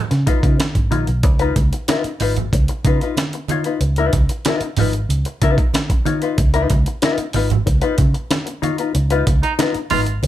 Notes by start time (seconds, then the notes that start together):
0.11 C#3, muted hollow-body jazz guitar stroke, snare, closed hi-hat
0.27 D#4 F4 B4, kick, closed hi-hat, muted conga
0.43 C#3 D#4 F4 B4, kick, closed hi-hat
0.59 muted hollow-body jazz guitar stroke, snare, closed hi-hat, high conga
0.75 G#1, kick, closed hi-hat
0.91 A#1 D#4 F4 C#5, closed hi-hat, high conga
1.07 B1, muted hollow-body jazz guitar stroke, closed hi-hat
1.23 C#2, muted hollow-body jazz guitar stroke, kick, closed hi-hat
1.39 D#4 F4 B4, closed hi-hat
1.56 C#2, muted hollow-body jazz guitar stroke, kick, closed hi-hat, muted conga
1.73 muted hollow-body jazz guitar stroke, closed hi-hat
1.88 D#4 F4 B4, snare, closed hi-hat, high conga
2.04 muted fingered electric bass stroke, muted hollow-body jazz guitar stroke, closed hi-hat
2.20 G#1 D#4 F4 B4, open hi-hat, muted conga
2.37 muted hollow-body jazz guitar stroke, closed hi-hat, low conga
2.53 C#2, muted hollow-body jazz guitar stroke, kick, closed hi-hat
2.68 muted hollow-body jazz guitar stroke, closed hi-hat
2.85 C#3 D#4 F4 B4, kick, closed hi-hat, muted conga
3.01 D#4 F4 B4, closed hi-hat
3.17 muted hollow-body jazz guitar stroke, snare, closed hi-hat, high conga
3.33 muted hollow-body jazz guitar stroke, closed hi-hat
3.48 D#4 F4 C#5, closed hi-hat, high conga
3.64 D#4 F4 B4, closed hi-hat
3.80 C#2, muted hollow-body jazz guitar stroke, closed hi-hat
3.96 D#4 F4 B4, closed hi-hat
4.13 C#2, muted hollow-body jazz guitar stroke, kick, closed hi-hat, muted conga
4.29 muted hollow-body jazz guitar stroke, closed hi-hat
4.45 D#4 F4 B4, snare, closed hi-hat, high conga
4.61 muted fingered electric bass stroke, muted hollow-body jazz guitar stroke, closed hi-hat
4.77 G#1 D#4 F4 B4, open hi-hat, muted conga, low conga
4.93 muted hollow-body jazz guitar stroke, closed hi-hat
5.09 C#2, closed hi-hat, muted conga
5.25 muted hollow-body jazz guitar stroke, closed hi-hat
5.42 C#3 D#4 F4 B4, kick, closed hi-hat, muted conga
5.58 muted hollow-body jazz guitar stroke, kick, closed hi-hat
5.74 muted hollow-body jazz guitar stroke, snare, closed hi-hat, high conga
5.90 muted hollow-body jazz guitar stroke, kick, closed hi-hat
6.05 D#4 F4 C#5, closed hi-hat, high conga
6.22 D#4 F4 B4, closed hi-hat
6.38 C#2, muted hollow-body jazz guitar stroke, kick, closed hi-hat
6.54 D#4 F4 B4, closed hi-hat
6.70 C#2, muted hollow-body jazz guitar stroke, kick, closed hi-hat, muted conga
6.86 muted hollow-body jazz guitar stroke, closed hi-hat
7.02 D#4 F4 B4, snare, closed hi-hat, high conga
7.18 muted fingered electric bass stroke, muted hollow-body jazz guitar stroke, closed hi-hat
7.33 G#1 D#4 F4 B4, open hi-hat, muted conga
7.50 muted hollow-body jazz guitar stroke, closed hi-hat, low conga
7.66 C#2, muted hollow-body jazz guitar stroke, kick, closed hi-hat
7.81 D#4 F4 B4, closed hi-hat
7.98 C#3, muted hollow-body jazz guitar stroke, kick, closed hi-hat, muted conga
8.14 muted hollow-body jazz guitar stroke, closed hi-hat
8.31 muted hollow-body jazz guitar stroke, snare, closed hi-hat, high conga
8.46 muted hollow-body jazz guitar stroke, closed hi-hat
8.62 D#4 F4 C#5, closed hi-hat, high conga
8.78 D#4 F4 B4, closed hi-hat
8.95 C#2, muted hollow-body jazz guitar stroke, closed hi-hat
9.10 D#4 F4 B4, closed hi-hat
9.27 C#2, muted hollow-body jazz guitar stroke, kick, closed hi-hat, muted conga
9.43 D#4, muted hollow-body jazz guitar stroke, closed hi-hat
9.59 D#4 F4 B4, snare, closed hi-hat, high conga
9.74 muted fingered electric bass stroke, muted hollow-body jazz guitar stroke, closed hi-hat
9.90 G#1 D#4 F4 B4, open hi-hat, muted conga, low conga
10.06 muted hollow-body jazz guitar stroke, closed hi-hat
10.23 C#2, muted hollow-body jazz guitar stroke, closed hi-hat, muted conga